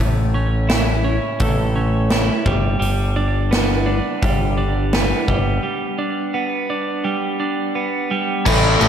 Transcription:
0, 0, Header, 1, 5, 480
1, 0, Start_track
1, 0, Tempo, 705882
1, 1904, Time_signature, 4, 2, 24, 8
1, 6041, End_track
2, 0, Start_track
2, 0, Title_t, "Clean electric guitar"
2, 0, Program_c, 0, 27
2, 0, Note_on_c, 0, 45, 64
2, 234, Note_on_c, 0, 61, 66
2, 468, Note_on_c, 0, 64, 63
2, 702, Note_off_c, 0, 61, 0
2, 710, Note_on_c, 0, 61, 61
2, 956, Note_on_c, 0, 57, 70
2, 1186, Note_off_c, 0, 61, 0
2, 1189, Note_off_c, 0, 45, 0
2, 1194, Note_on_c, 0, 61, 60
2, 1429, Note_off_c, 0, 64, 0
2, 1437, Note_on_c, 0, 64, 54
2, 1668, Note_off_c, 0, 57, 0
2, 1669, Note_off_c, 0, 61, 0
2, 1670, Note_off_c, 0, 64, 0
2, 1671, Note_on_c, 0, 55, 65
2, 1899, Note_off_c, 0, 55, 0
2, 1901, Note_on_c, 0, 55, 62
2, 2150, Note_on_c, 0, 62, 66
2, 2387, Note_on_c, 0, 59, 64
2, 2618, Note_off_c, 0, 62, 0
2, 2626, Note_on_c, 0, 62, 65
2, 2863, Note_off_c, 0, 55, 0
2, 2871, Note_on_c, 0, 55, 70
2, 3103, Note_off_c, 0, 62, 0
2, 3111, Note_on_c, 0, 62, 63
2, 3346, Note_off_c, 0, 59, 0
2, 3354, Note_on_c, 0, 59, 61
2, 3586, Note_off_c, 0, 55, 0
2, 3594, Note_on_c, 0, 55, 66
2, 3821, Note_off_c, 0, 55, 0
2, 3829, Note_on_c, 0, 55, 62
2, 4062, Note_off_c, 0, 62, 0
2, 4070, Note_on_c, 0, 62, 63
2, 4304, Note_off_c, 0, 59, 0
2, 4312, Note_on_c, 0, 59, 65
2, 4547, Note_off_c, 0, 62, 0
2, 4555, Note_on_c, 0, 62, 61
2, 4782, Note_off_c, 0, 55, 0
2, 4790, Note_on_c, 0, 55, 73
2, 5022, Note_off_c, 0, 62, 0
2, 5030, Note_on_c, 0, 62, 54
2, 5264, Note_off_c, 0, 59, 0
2, 5272, Note_on_c, 0, 59, 53
2, 5507, Note_off_c, 0, 55, 0
2, 5515, Note_on_c, 0, 55, 66
2, 5748, Note_off_c, 0, 62, 0
2, 5749, Note_off_c, 0, 59, 0
2, 5750, Note_off_c, 0, 55, 0
2, 6041, End_track
3, 0, Start_track
3, 0, Title_t, "Overdriven electric guitar"
3, 0, Program_c, 1, 29
3, 5749, Note_on_c, 1, 45, 75
3, 5752, Note_on_c, 1, 52, 88
3, 5757, Note_on_c, 1, 57, 96
3, 5976, Note_off_c, 1, 45, 0
3, 5982, Note_off_c, 1, 57, 0
3, 5984, Note_on_c, 1, 45, 85
3, 5985, Note_off_c, 1, 52, 0
3, 5987, Note_on_c, 1, 52, 80
3, 5990, Note_on_c, 1, 57, 88
3, 6041, Note_off_c, 1, 45, 0
3, 6041, Note_off_c, 1, 52, 0
3, 6041, Note_off_c, 1, 57, 0
3, 6041, End_track
4, 0, Start_track
4, 0, Title_t, "Picked electric bass"
4, 0, Program_c, 2, 34
4, 0, Note_on_c, 2, 33, 76
4, 797, Note_off_c, 2, 33, 0
4, 953, Note_on_c, 2, 33, 86
4, 1554, Note_off_c, 2, 33, 0
4, 1671, Note_on_c, 2, 31, 75
4, 1870, Note_off_c, 2, 31, 0
4, 1907, Note_on_c, 2, 31, 73
4, 2713, Note_off_c, 2, 31, 0
4, 2878, Note_on_c, 2, 31, 91
4, 3478, Note_off_c, 2, 31, 0
4, 3590, Note_on_c, 2, 31, 77
4, 3790, Note_off_c, 2, 31, 0
4, 5753, Note_on_c, 2, 33, 86
4, 5951, Note_off_c, 2, 33, 0
4, 5991, Note_on_c, 2, 33, 80
4, 6041, Note_off_c, 2, 33, 0
4, 6041, End_track
5, 0, Start_track
5, 0, Title_t, "Drums"
5, 472, Note_on_c, 9, 46, 53
5, 475, Note_on_c, 9, 38, 106
5, 540, Note_off_c, 9, 46, 0
5, 543, Note_off_c, 9, 38, 0
5, 949, Note_on_c, 9, 46, 50
5, 954, Note_on_c, 9, 36, 106
5, 1017, Note_off_c, 9, 46, 0
5, 1022, Note_off_c, 9, 36, 0
5, 1429, Note_on_c, 9, 46, 48
5, 1432, Note_on_c, 9, 38, 103
5, 1497, Note_off_c, 9, 46, 0
5, 1500, Note_off_c, 9, 38, 0
5, 1672, Note_on_c, 9, 36, 93
5, 1740, Note_off_c, 9, 36, 0
5, 1917, Note_on_c, 9, 46, 46
5, 1985, Note_off_c, 9, 46, 0
5, 2395, Note_on_c, 9, 46, 48
5, 2398, Note_on_c, 9, 38, 110
5, 2463, Note_off_c, 9, 46, 0
5, 2466, Note_off_c, 9, 38, 0
5, 2873, Note_on_c, 9, 36, 106
5, 2874, Note_on_c, 9, 46, 42
5, 2941, Note_off_c, 9, 36, 0
5, 2942, Note_off_c, 9, 46, 0
5, 3350, Note_on_c, 9, 46, 44
5, 3353, Note_on_c, 9, 38, 102
5, 3418, Note_off_c, 9, 46, 0
5, 3421, Note_off_c, 9, 38, 0
5, 3592, Note_on_c, 9, 36, 77
5, 3660, Note_off_c, 9, 36, 0
5, 5754, Note_on_c, 9, 49, 120
5, 5755, Note_on_c, 9, 36, 107
5, 5822, Note_off_c, 9, 49, 0
5, 5823, Note_off_c, 9, 36, 0
5, 5990, Note_on_c, 9, 51, 69
5, 6041, Note_off_c, 9, 51, 0
5, 6041, End_track
0, 0, End_of_file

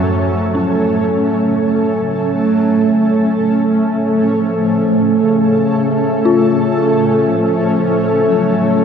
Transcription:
0, 0, Header, 1, 6, 480
1, 0, Start_track
1, 0, Tempo, 1038062
1, 18, Time_signature, 4, 2, 24, 8
1, 2418, Tempo, 1023891
1, 4114, End_track
2, 0, Start_track
2, 0, Title_t, "Synth bell"
2, 0, Program_c, 0, 98
2, 0, Control_c, 0, 64, 127
2, 25, Control_c, 0, 64, 0
2, 100, Control_c, 0, 64, 127
2, 254, Note_on_c, 0, 61, 47
2, 2898, Note_on_c, 0, 65, 60
2, 3137, Note_off_c, 0, 61, 0
2, 4114, Note_off_c, 0, 65, 0
2, 4114, End_track
3, 0, Start_track
3, 0, Title_t, "Synth texture"
3, 0, Program_c, 1, 99
3, 10, Note_on_c, 1, 69, 76
3, 15, Note_on_c, 1, 57, 81
3, 4114, Note_off_c, 1, 57, 0
3, 4114, Note_off_c, 1, 69, 0
3, 4114, End_track
4, 0, Start_track
4, 0, Title_t, "Ambient pad"
4, 0, Program_c, 2, 92
4, 0, Note_on_c, 2, 57, 65
4, 0, Note_on_c, 2, 61, 65
4, 0, Note_on_c, 2, 69, 75
4, 4114, Note_off_c, 2, 57, 0
4, 4114, Note_off_c, 2, 61, 0
4, 4114, Note_off_c, 2, 69, 0
4, 4114, End_track
5, 0, Start_track
5, 0, Title_t, "Synth drone"
5, 0, Program_c, 3, 95
5, 0, Note_on_c, 3, 42, 61
5, 0, Note_on_c, 3, 54, 62
5, 8, Note_on_c, 3, 57, 65
5, 65, Note_off_c, 3, 54, 0
5, 66, Note_off_c, 3, 42, 0
5, 4114, Note_off_c, 3, 57, 0
5, 4114, End_track
6, 0, Start_track
6, 0, Title_t, "Bass clarinet"
6, 0, Program_c, 4, 71
6, 12, Note_on_c, 4, 53, 92
6, 490, Note_on_c, 4, 54, 91
6, 497, Note_off_c, 4, 53, 0
6, 957, Note_off_c, 4, 54, 0
6, 960, Note_on_c, 4, 54, 105
6, 1399, Note_off_c, 4, 54, 0
6, 1415, Note_on_c, 4, 55, 58
6, 1450, Note_on_c, 4, 54, 80
6, 1457, Note_off_c, 4, 55, 0
6, 1809, Note_off_c, 4, 54, 0
6, 1933, Note_on_c, 4, 53, 91
6, 2419, Note_on_c, 4, 49, 94
6, 2426, Note_off_c, 4, 53, 0
6, 2894, Note_off_c, 4, 49, 0
6, 2897, Note_on_c, 4, 49, 87
6, 3376, Note_on_c, 4, 53, 98
6, 3383, Note_off_c, 4, 49, 0
6, 3857, Note_on_c, 4, 54, 108
6, 3865, Note_off_c, 4, 53, 0
6, 4114, Note_off_c, 4, 54, 0
6, 4114, End_track
0, 0, End_of_file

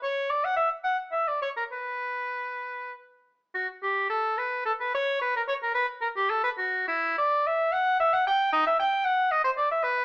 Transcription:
0, 0, Header, 1, 2, 480
1, 0, Start_track
1, 0, Key_signature, 2, "minor"
1, 0, Tempo, 549451
1, 28, Time_signature, 3, 2, 24, 8
1, 989, Tempo, 603015
1, 2909, Tempo, 548446
1, 5309, Tempo, 574163
1, 6269, Tempo, 532387
1, 8626, End_track
2, 0, Start_track
2, 0, Title_t, "Oboe"
2, 0, Program_c, 0, 68
2, 24, Note_on_c, 0, 73, 71
2, 264, Note_on_c, 0, 74, 64
2, 277, Note_off_c, 0, 73, 0
2, 386, Note_on_c, 0, 78, 73
2, 399, Note_off_c, 0, 74, 0
2, 484, Note_off_c, 0, 78, 0
2, 489, Note_on_c, 0, 76, 70
2, 600, Note_off_c, 0, 76, 0
2, 730, Note_on_c, 0, 78, 67
2, 844, Note_off_c, 0, 78, 0
2, 975, Note_on_c, 0, 76, 68
2, 1102, Note_on_c, 0, 74, 57
2, 1114, Note_off_c, 0, 76, 0
2, 1212, Note_off_c, 0, 74, 0
2, 1217, Note_on_c, 0, 73, 59
2, 1272, Note_off_c, 0, 73, 0
2, 1332, Note_on_c, 0, 70, 55
2, 1390, Note_off_c, 0, 70, 0
2, 1454, Note_on_c, 0, 71, 49
2, 2408, Note_off_c, 0, 71, 0
2, 2905, Note_on_c, 0, 66, 60
2, 3017, Note_off_c, 0, 66, 0
2, 3152, Note_on_c, 0, 67, 65
2, 3384, Note_off_c, 0, 67, 0
2, 3389, Note_on_c, 0, 69, 70
2, 3634, Note_on_c, 0, 71, 64
2, 3647, Note_off_c, 0, 69, 0
2, 3873, Note_off_c, 0, 71, 0
2, 3878, Note_on_c, 0, 69, 66
2, 3934, Note_off_c, 0, 69, 0
2, 4007, Note_on_c, 0, 71, 60
2, 4122, Note_off_c, 0, 71, 0
2, 4131, Note_on_c, 0, 73, 78
2, 4360, Note_off_c, 0, 73, 0
2, 4367, Note_on_c, 0, 71, 71
2, 4480, Note_off_c, 0, 71, 0
2, 4498, Note_on_c, 0, 70, 61
2, 4547, Note_off_c, 0, 70, 0
2, 4601, Note_on_c, 0, 73, 71
2, 4653, Note_off_c, 0, 73, 0
2, 4728, Note_on_c, 0, 70, 61
2, 4827, Note_off_c, 0, 70, 0
2, 4832, Note_on_c, 0, 71, 70
2, 4939, Note_off_c, 0, 71, 0
2, 5068, Note_on_c, 0, 70, 64
2, 5122, Note_off_c, 0, 70, 0
2, 5198, Note_on_c, 0, 67, 73
2, 5316, Note_on_c, 0, 69, 66
2, 5328, Note_off_c, 0, 67, 0
2, 5425, Note_off_c, 0, 69, 0
2, 5430, Note_on_c, 0, 71, 73
2, 5483, Note_off_c, 0, 71, 0
2, 5552, Note_on_c, 0, 66, 73
2, 5790, Note_off_c, 0, 66, 0
2, 5801, Note_on_c, 0, 64, 74
2, 6034, Note_off_c, 0, 64, 0
2, 6053, Note_on_c, 0, 74, 77
2, 6295, Note_on_c, 0, 76, 71
2, 6309, Note_off_c, 0, 74, 0
2, 6525, Note_on_c, 0, 78, 84
2, 6539, Note_off_c, 0, 76, 0
2, 6762, Note_off_c, 0, 78, 0
2, 6773, Note_on_c, 0, 76, 88
2, 6897, Note_on_c, 0, 78, 84
2, 6910, Note_off_c, 0, 76, 0
2, 7008, Note_off_c, 0, 78, 0
2, 7017, Note_on_c, 0, 79, 95
2, 7243, Note_off_c, 0, 79, 0
2, 7248, Note_on_c, 0, 63, 94
2, 7364, Note_off_c, 0, 63, 0
2, 7375, Note_on_c, 0, 76, 83
2, 7487, Note_off_c, 0, 76, 0
2, 7490, Note_on_c, 0, 79, 90
2, 7720, Note_on_c, 0, 78, 79
2, 7734, Note_off_c, 0, 79, 0
2, 7960, Note_on_c, 0, 75, 86
2, 7973, Note_off_c, 0, 78, 0
2, 8071, Note_off_c, 0, 75, 0
2, 8076, Note_on_c, 0, 72, 88
2, 8129, Note_off_c, 0, 72, 0
2, 8196, Note_on_c, 0, 74, 78
2, 8311, Note_off_c, 0, 74, 0
2, 8320, Note_on_c, 0, 76, 82
2, 8428, Note_on_c, 0, 71, 92
2, 8441, Note_off_c, 0, 76, 0
2, 8626, Note_off_c, 0, 71, 0
2, 8626, End_track
0, 0, End_of_file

